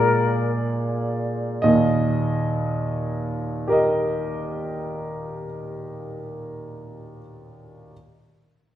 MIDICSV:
0, 0, Header, 1, 3, 480
1, 0, Start_track
1, 0, Key_signature, -3, "major"
1, 0, Tempo, 1438849
1, 545, Tempo, 1360544
1, 546, Time_signature, 6, 3, 24, 8
1, 3057, End_track
2, 0, Start_track
2, 0, Title_t, "Flute"
2, 0, Program_c, 0, 73
2, 0, Note_on_c, 0, 70, 43
2, 175, Note_off_c, 0, 70, 0
2, 3057, End_track
3, 0, Start_track
3, 0, Title_t, "Grand piano"
3, 0, Program_c, 1, 0
3, 0, Control_c, 1, 64, 127
3, 0, Note_on_c, 1, 46, 37
3, 0, Note_on_c, 1, 56, 27
3, 0, Note_on_c, 1, 58, 28
3, 0, Note_on_c, 1, 65, 27
3, 0, Note_on_c, 1, 74, 52
3, 533, Note_off_c, 1, 56, 0
3, 534, Note_off_c, 1, 46, 0
3, 534, Note_off_c, 1, 58, 0
3, 535, Note_off_c, 1, 65, 0
3, 540, Note_on_c, 1, 75, 47
3, 544, Note_off_c, 1, 74, 0
3, 546, Note_on_c, 1, 39, 35
3, 547, Note_on_c, 1, 46, 32
3, 554, Control_c, 1, 64, 0
3, 619, Control_c, 1, 64, 127
3, 1265, Note_on_c, 1, 67, 28
3, 1272, Note_on_c, 1, 70, 30
3, 1277, Note_off_c, 1, 75, 0
3, 1282, Note_on_c, 1, 75, 30
3, 1895, Note_off_c, 1, 39, 0
3, 1896, Note_off_c, 1, 46, 0
3, 2503, Note_off_c, 1, 67, 0
3, 2507, Note_off_c, 1, 70, 0
3, 2511, Note_off_c, 1, 75, 0
3, 2766, Control_c, 1, 64, 0
3, 3057, End_track
0, 0, End_of_file